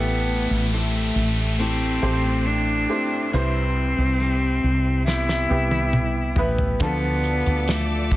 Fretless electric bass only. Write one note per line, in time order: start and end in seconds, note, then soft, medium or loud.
0.00 0.46 A1 medium
0.51 1.12 A1 medium
1.16 1.99 A1 medium
2.03 2.86 A1 medium
3.34 3.95 C2 medium
3.98 4.59 C2 medium
4.64 5.47 C2 medium
5.51 6.33 C2 medium
6.38 6.78 A1 medium
6.81 7.42 D2 medium
7.47 8.17 D2 medium